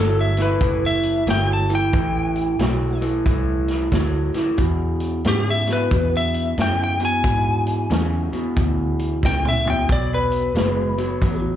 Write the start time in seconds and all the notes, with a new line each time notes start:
Already playing: G1 A2 F#3 A4
0.21 E5
0.37 A2 E3, snare, closed hi-hat
0.42 B4
0.61 F#1 A2 E3, kick, closed hi-hat
0.86 E5
1.03 closed hi-hat
1.27 G1 A2 F#3 G5, snare, closed hi-hat
1.53 A5
1.69 A2 E3, closed hi-hat
1.75 G5
1.93 A1 A2 E3, kick, closed hi-hat
2.35 closed hi-hat
2.59 B1 A2 F#3, snare, closed hi-hat
3.01 A2 E3, closed hi-hat
3.26 C2 A2 E3, kick, closed hi-hat
3.68 snare, closed hi-hat
3.92 D2 A2 F#3, kick, snare, closed hi-hat
4.34 A2 E3, snare, closed hi-hat
4.58 E2 B2, kick, closed hi-hat
5.00 closed hi-hat
5.24 E2 G#2 C#3 G4, snare, closed hi-hat
5.50 E5
5.67 E2 B2, snare, closed hi-hat
5.73 B4
5.91 E2 B2, kick, closed hi-hat
6.17 E5
6.34 closed hi-hat
6.58 E2 F#2 C#3, snare, closed hi-hat
6.62 G5
6.84 G5
7.00 E2 B2, closed hi-hat
7.05 G#5
7.24 E2 G#2 B2, kick, closed hi-hat
7.67 closed hi-hat
7.90 E2 C#3, snare, closed hi-hat
8.33 E2 B2, muted fingered electric bass stroke, closed hi-hat
8.56 D2 E2 B2, kick, closed hi-hat
8.99 closed hi-hat
9.23 C#2 E2 C#3 G5, kick, snare
9.45 E5, mid tom
9.65 E2 B2, floor tom
9.70 G5
9.89 B1 B2 F#3 D5, kick, closed hi-hat
10.14 B4
10.32 closed hi-hat
10.55 F#1 B2 G#3, snare, closed hi-hat
10.98 B2 F#3, closed hi-hat
11.21 A1 B2 F#3, kick, closed hi-hat